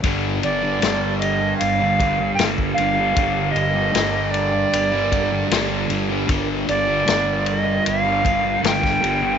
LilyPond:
<<
  \new Staff \with { instrumentName = "Flute" } { \time 4/4 \key g \minor \tempo 4 = 77 r8 d''4 ees''8 f''4 g''8 f''8~ | f''8 ees''4 d''2 r8 | r8 d''4 ees''8 f''4 g''4 | }
  \new Staff \with { instrumentName = "String machine" } { \time 4/4 \key g \minor << { <d bes'>1~ | <d bes'>1~ | <d bes'>1 | } \\ { g'1~ | g'1 | f'1 | } >> }
  \new Staff \with { instrumentName = "Distorted electric guitar" } { \clef bass \time 4/4 \key g \minor <g, d g>8. <d g>16 <g, d g>4~ <g, d g>16 <d g>16 <g, d g>8 <g, d g>8 <g, d g>16 <d g>16 | <g, d g>8. <d g>16 <g, d g>4~ <g, d g>16 <d g>16 <g, d g>8 <g, d g>8 <g, d g>16 <d g>16 | <g, d g>8. <d g>16 <g, d g>4~ <g, d g>16 <d g>16 <g, d g>8 <g, d g>8 <g, d g>16 <d g>16 | }
  \new Staff \with { instrumentName = "Fingered electric bass" } { \clef bass \time 4/4 \key g \minor g,,8 g,,8 g,,4 g,,4 g,,8 g,,8 | g,,8 g,,8 g,,4 g,,4 g,,8 g,,8 | g,,8 g,,8 g,,4 g,,4 g,,8 g,,8 | }
  \new DrumStaff \with { instrumentName = "Drums" } \drummode { \time 4/4 <bd cymr>8 cymr8 <cymr sn>8 cymr8 cymr8 <bd cymr>8 <cymr sn>16 bd16 cymr8 | <bd cymr>8 cymr8 <cymr sn>8 cymr8 cymr8 <bd cymr>8 <cymr sn>8 cymr8 | <bd cymr>8 cymr8 <cymr sn>8 cymr8 cymr8 <bd cymr>8 <cymr sn>16 <bd sn>16 cymr8 | }
>>